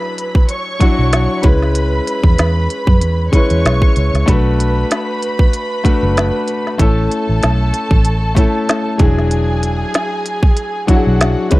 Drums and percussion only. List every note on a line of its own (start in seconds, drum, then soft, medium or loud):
0.18 closed hi-hat medium
0.35 kick medium
0.49 closed hi-hat medium
0.81 kick medium
0.81 closed hi-hat medium
1.13 snare loud
1.13 closed hi-hat medium
1.43 kick loud
1.43 closed hi-hat medium
1.62 snare soft
1.75 closed hi-hat medium
2.07 closed hi-hat medium
2.24 kick medium
2.38 snare loud
2.38 closed hi-hat medium
2.70 closed hi-hat medium
2.87 kick medium
3.01 closed hi-hat medium
3.33 kick medium
3.33 closed hi-hat medium
3.50 closed hi-hat medium
3.66 snare loud
3.66 closed hi-hat medium
3.82 kick medium
3.96 closed hi-hat medium
4.15 snare soft
4.15 closed hi-hat soft
4.28 kick loud
4.28 closed hi-hat medium
4.60 closed hi-hat medium
4.91 snare loud
4.91 closed hi-hat medium
5.23 closed hi-hat medium
5.39 kick medium
5.53 closed hi-hat medium
5.85 kick medium
5.85 closed hi-hat medium
6.17 snare loud
6.17 closed hi-hat medium
6.48 closed hi-hat medium
6.67 snare soft
6.79 kick loud
6.79 closed hi-hat loud
7.11 closed hi-hat medium
7.43 snare loud
7.43 closed hi-hat medium
7.74 closed hi-hat medium
7.91 kick medium
8.05 closed hi-hat medium
8.36 kick medium
8.36 closed hi-hat medium
8.69 snare loud
8.69 closed hi-hat medium
8.99 kick loud
8.99 closed hi-hat medium
9.18 snare soft
9.31 closed hi-hat medium
9.63 closed hi-hat medium
9.94 snare loud
9.94 closed hi-hat loud
10.26 closed hi-hat medium
10.43 kick medium
10.57 closed hi-hat medium
10.88 kick medium
10.88 closed hi-hat medium
11.21 snare loud
11.21 closed hi-hat medium
11.51 kick loud
11.51 closed hi-hat medium